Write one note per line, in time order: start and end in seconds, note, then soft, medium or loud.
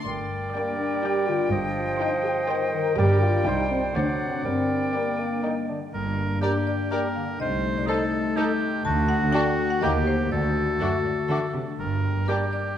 0.00 0.54 D4 soft
0.05 0.45 G1 medium
0.05 0.44 G2 medium
0.05 1.51 G2 soft
0.05 1.47 A#4 medium
0.05 1.48 D5 soft
0.05 2.94 G5 medium
0.31 1.02 G3 soft
0.55 1.48 G3 medium
0.55 0.77 A#3 medium
0.55 1.54 D4 soft
0.55 0.91 D5 medium
0.55 0.91 G5 medium
0.79 1.03 D4 medium
0.79 2.24 G4 soft
1.03 1.75 G3 soft
1.03 1.28 G4 medium
1.03 1.39 D5 medium
1.03 1.39 G5 medium
1.03 1.40 G5 medium
1.27 1.54 D3 soft
1.27 1.51 F4 medium
1.51 1.90 G1 medium
1.51 1.90 G2 medium
1.51 2.97 G2 medium
1.51 2.47 F3 medium
1.51 2.95 C5 medium
1.51 2.94 D#5 medium
1.76 2.48 G3 soft
1.99 3.00 C4 medium
1.99 2.10 D#4 medium
1.99 2.36 C5 medium
1.99 2.36 G5 medium
1.99 2.37 G5 medium
2.23 2.34 G4 medium
2.23 3.22 G4 medium
2.48 2.97 D#3 medium
2.48 3.97 G3 medium
2.48 2.72 C5 loud
2.48 2.85 C5 medium
2.48 2.85 G5 medium
2.48 2.86 G5 medium
2.72 2.99 D#3 medium
2.72 2.97 A#4 medium
2.96 3.36 G1 medium
2.96 3.36 G2 medium
2.96 3.48 G2 medium
2.96 3.45 G3 medium
2.96 3.21 G4 loud
2.96 3.34 A#4 medium
2.96 3.45 A#4 medium
2.96 3.46 D5 medium
2.96 3.34 G5 medium
2.96 3.96 G5 medium
2.96 3.34 G5 medium
3.21 3.48 A#3 soft
3.21 3.45 F4 medium
3.21 3.69 G4 medium
3.46 3.84 C2 medium
3.46 3.85 C2 medium
3.46 3.97 C3 medium
3.46 3.94 G3 medium
3.46 3.71 D#4 medium
3.46 4.43 C5 medium
3.46 3.83 C5 medium
3.46 3.97 C5 medium
3.46 3.83 G5 medium
3.70 4.19 C4 soft
3.70 3.82 C4 medium
3.70 3.97 G4 soft
3.94 4.34 D2 medium
3.94 4.47 D3 medium
3.94 4.44 F#3 medium
3.94 4.07 D4 medium
3.94 4.32 C5 medium
3.94 4.32 D5 medium
3.94 5.69 D5 medium
3.94 4.47 F#5 medium
3.94 4.32 F#5 medium
4.20 4.47 C4 soft
4.20 4.45 C4 medium
4.20 5.18 D4 soft
4.44 4.84 G1 medium
4.44 4.84 G2 medium
4.44 5.93 G2 soft
4.44 4.89 G3 medium
4.44 4.94 C4 medium
4.44 5.66 A#4 soft
4.44 5.69 G5 medium
4.69 5.43 G3 soft
4.94 5.21 G3 medium
4.94 6.17 A#3 soft
4.94 5.69 A#3 medium
4.94 5.31 A#4 soft
4.94 5.31 D5 soft
4.94 5.32 G5 soft
5.19 5.43 A#3 medium
5.19 6.42 D4 soft
5.43 7.42 G3 soft
5.43 5.54 D#4 medium
5.43 5.80 A#4 soft
5.43 5.81 D5 soft
5.43 5.81 G5 soft
5.69 5.96 D3 soft
5.69 5.80 D4 soft
5.93 6.34 G1 medium
5.93 6.34 G2 medium
5.93 7.42 G2 medium
5.93 7.36 A#3 medium
5.93 7.36 D4 medium
5.93 6.39 A#4 medium
6.19 6.90 A#3 soft
6.41 6.58 D4 medium
6.41 7.42 D4 medium
6.41 6.89 G4 medium
6.41 6.58 G4 medium
6.41 6.50 G4 soft
6.41 6.65 A#4 medium
6.41 6.51 A#4 soft
6.41 6.51 D5 medium
6.41 6.51 A#5 medium
6.67 7.42 G4 soft
6.67 6.89 D5 medium
6.91 7.42 A#3 soft
6.91 7.08 D4 medium
6.91 6.99 G4 medium
6.91 7.08 G4 medium
6.91 7.39 A#4 medium
6.91 7.00 A#4 medium
6.91 6.99 D5 medium
6.91 7.14 G5 medium
6.91 7.00 A#5 medium
7.16 7.42 D3 soft
7.16 7.38 F5 medium
7.40 7.80 C2 medium
7.40 8.87 C3 medium
7.40 8.82 A3 medium
7.40 8.82 D#4 medium
7.40 7.87 C5 medium
7.40 7.74 D#5 medium
7.64 8.36 A3 soft
7.78 7.88 D5 medium
7.87 8.04 D#4 medium
7.87 7.96 D#4 medium
7.87 8.87 D#4 medium
7.87 7.95 A4 medium
7.87 8.38 A4 medium
7.87 8.04 A4 medium
7.87 7.97 A4 medium
7.87 8.57 C5 medium
7.87 7.98 A5 medium
8.13 9.56 A4 medium
8.36 9.85 A3 medium
8.36 8.44 D#4 medium
8.36 8.53 D#4 medium
8.36 8.85 G4 medium
8.36 8.53 A4 medium
8.36 8.45 A4 medium
8.36 8.46 A4 medium
8.36 8.45 A5 medium
8.61 8.87 C4 medium
8.84 9.25 D2 medium
8.84 9.84 D3 medium
8.84 9.78 A3 medium
8.84 9.78 F#4 medium
8.84 9.85 F#4 medium
8.84 9.07 A5 loud
9.09 9.84 D4 medium
9.09 9.31 F#5 loud
9.33 9.41 D4 medium
9.33 9.50 D4 medium
9.33 9.84 F#4 medium
9.33 9.49 F#4 medium
9.33 9.41 F#4 medium
9.33 9.42 A4 medium
9.33 9.67 G5 loud
9.33 9.43 A5 medium
9.57 9.84 A4 medium
9.70 9.81 F#5 loud
9.81 10.23 D#2 medium
9.81 10.33 D#3 medium
9.81 9.90 A#3 medium
9.81 10.31 A#3 medium
9.81 9.98 A#3 medium
9.81 10.31 G4 medium
9.81 9.90 G4 medium
9.81 9.98 G4 medium
9.81 9.91 G4 medium
9.81 10.31 G4 medium
9.81 10.04 D#5 medium
9.81 9.91 A#5 medium
10.06 10.33 G4 medium
10.06 10.33 A#4 medium
10.06 10.30 C5 medium
10.31 10.72 D2 medium
10.31 10.73 D2 medium
10.31 11.81 D3 medium
10.31 11.53 A3 medium
10.31 11.55 F#4 medium
10.31 11.53 A4 medium
10.31 11.26 D5 medium
10.56 11.28 A3 soft
10.80 10.88 F#2 medium
10.80 10.97 A3 medium
10.80 10.88 D4 medium
10.80 11.81 F#4 medium
10.80 10.97 F#4 medium
10.80 10.89 F#4 medium
10.80 10.88 A4 medium
10.80 10.91 D6 medium
11.05 11.13 A2 medium
11.05 12.50 D5 medium
11.29 11.38 D3 medium
11.29 11.81 A3 medium
11.29 11.47 A3 medium
11.29 11.39 D4 medium
11.29 11.46 F#4 medium
11.29 11.38 F#4 medium
11.29 11.37 A4 medium
11.29 11.40 D6 medium
11.54 11.62 C3 medium
11.54 12.78 D4 soft
11.78 12.21 G1 medium
11.78 12.78 G2 medium
11.78 12.20 G2 medium
11.78 12.25 A#4 medium
12.03 12.75 G3 soft
12.27 12.45 G3 medium
12.27 12.44 A#3 medium
12.27 12.37 D4 medium
12.27 12.44 G4 medium
12.27 12.78 G4 medium
12.27 12.44 G4 medium
12.27 12.37 G4 medium
12.27 12.78 G4 medium
12.27 12.35 A#4 soft
12.27 12.51 A#4 medium
12.27 12.37 D6 medium
12.51 12.78 D5 medium
12.51 12.75 D5 medium